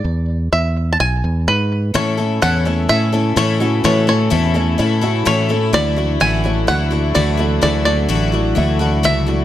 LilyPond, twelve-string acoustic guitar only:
\new Staff \with { instrumentName = "Twelve-string acoustic guitar" } { \time 4/4 \key a \major \tempo 4 = 127 r1 | <a, e a cis' e' a'>8 <a cis' e' a'>8 <a, e a cis' e' a'>8 <a cis' e' a'>8 <a cis' e' a'>8 <a cis' e' a'>8 <a, e a cis' e' a'>8 <a cis' e' a'>8 | <a, e a cis' e' a'>8 <a cis' e' a'>8 <a, e a cis' e' a'>8 <a cis' e' a'>8 <a cis' e' a'>8 <a cis' e' a'>8 <a, e a cis' e' a'>8 <a cis' e' a'>8 | <d e a e' fis'>8 <a e' fis'>8 <d e a e' fis'>8 <a e' fis'>8 <e a e' fis'>8 <a e' fis'>8 <d e a e' fis'>8 <a e' fis'>8 |
<d e a e' fis'>8 <a e' fis'>8 <d e a e' fis'>8 <a e' fis'>8 <e a e' fis'>8 <a e' fis'>8 <d e a e' fis'>8 <a e' fis'>8 | }